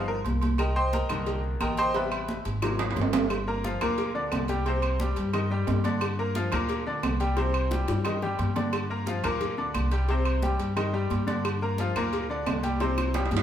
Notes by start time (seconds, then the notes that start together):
Already playing: G1 F3 B3 D#4
0.08 A#4, high conga
0.25 C2, cowbell, high conga, low agogo
0.42 cowbell, high conga, low agogo
0.58 A#4 D#5 G5 A#5, cowbell, high conga, low agogo, claves
0.76 C5 D#5 G5 C6, high conga
0.93 A#4 D#5 G5 A#5, cowbell, high conga, low agogo
1.09 C2 D3 D#3 A#3, cowbell, high conga, low conga, low agogo, claves
1.26 cowbell, high conga, low agogo
1.44 high conga
1.60 A1 A#4 D#5 G5 A#5, cowbell, high conga, low agogo, claves
1.77 C5 D#5 G5 C6, cowbell, low agogo
1.94 C3 G3 B3 B4 E5 G5 B5, cowbell, high conga, low agogo
2.12 high conga, low agogo, claves
2.28 cowbell, high conga
2.45 G#1, cowbell, high conga, low agogo
2.62 C3 F#3 A#3, cowbell, high bongo, high conga, low agogo, claves
2.79 high bongo, high conga, high timbale
2.91 high timbale
2.96 G1, cowbell, low bongo, high conga, low agogo
3.02 low timbale
3.13 cowbell, low bongo, high conga, low timbale, low agogo
3.30 cowbell, high conga, low agogo, claves
3.47 A#3 A#4 A#5, high conga
3.64 F3 F4 F5, cowbell, high conga, low agogo
3.81 D2 A#2 A#3 A#4, cowbell, high conga, low conga, low agogo, claves
3.98 cowbell, high conga, low agogo
4.15 D3 D4 D5, high conga
4.32 C2, cowbell, high conga, low timbale, low agogo, claves
4.48 G3 G4 G5, cowbell, high conga, low agogo
4.66 C3 C4 C5, cowbell, high conga, low agogo
4.82 high conga, low agogo, claves
5.00 G3 G4 G5, cowbell, high conga
5.16 G2, cowbell, high conga, low agogo
5.33 D#3 D#4 D#5, cowbell, high conga, low agogo, claves
5.51 G3 G4 G5, high conga
5.67 G2, cowbell, high conga, low timbale, low agogo
5.84 D3 D4 D5, cowbell, high conga, low agogo
6.01 cowbell, low agogo, claves
6.19 A#3 A#4 A#5, high conga
6.35 F3 F4 F5, cowbell, high conga, low agogo
6.52 D2 A#2 A#3 A#4, cowbell, high conga, low conga, low agogo, claves
6.69 cowbell, high conga, low agogo
6.86 D3 D4 D5, high conga
7.03 C2, cowbell, high conga, low timbale, low agogo, claves
7.20 G3 G4 G5, cowbell, low agogo
7.37 C3 C4 C5, cowbell, high bongo, high conga, low agogo
7.54 high conga, low agogo, claves
7.71 G3 G4 G5, cowbell, high bongo, high conga
7.88 G2, cowbell, high bongo, low agogo
8.05 D#3 D#4 D#5, cowbell, low bongo, high conga, low agogo, claves
8.22 G3 G4 G5, low bongo, high conga
8.39 G2, cowbell, low bongo, high conga, low agogo
8.56 D3 D4 D5, cowbell, low bongo, high conga, low agogo
8.73 cowbell, low agogo, claves
8.90 A#3 A#4 A#5, high conga
9.06 F3 F4 F5, cowbell, high conga, low agogo
9.24 D2 A#2 A#3 A#4, cowbell, high conga, low conga, low agogo, claves
9.41 cowbell, high conga, low conga, low agogo
9.58 D3 D4 D5, high conga
9.74 C2, cowbell, high conga, low agogo, claves
9.91 G3 G4 G5, cowbell, low agogo
10.08 C3 C4 C5, cowbell, high conga, low agogo
10.25 high conga, low agogo, claves
10.42 G3 G4 G5, cowbell, high conga
10.60 G2, cowbell, high conga, low agogo
10.76 D#3 D#4 D#5, cowbell, high conga, low agogo, claves
10.93 G3 G4 G5, high conga
11.10 G2, cowbell, high conga, low agogo
11.27 D3 D4 D5, cowbell, high conga, low agogo
11.45 cowbell, high conga, low agogo, claves
11.62 A#3 A#4 A#5, high conga
11.78 F3 F4 F5, cowbell, high conga, low agogo
11.96 A#2 A#3 A#4, cowbell, high conga, low conga, low agogo, claves
12.13 cowbell, high conga, low agogo
12.30 D3 D4 D5, high conga
12.46 C2, cowbell, high conga, low timbale, low agogo, claves
12.63 G3 G4 G5, cowbell, high conga, low agogo
12.80 C3 C4 C5, cowbell, high bongo, high conga, low agogo
12.98 high bongo, high conga, low agogo, claves
13.14 G3 G4 G5, cowbell, high conga, high timbale
13.26 high timbale
13.31 G2, cowbell, low bongo, high conga, low agogo
13.37 high timbale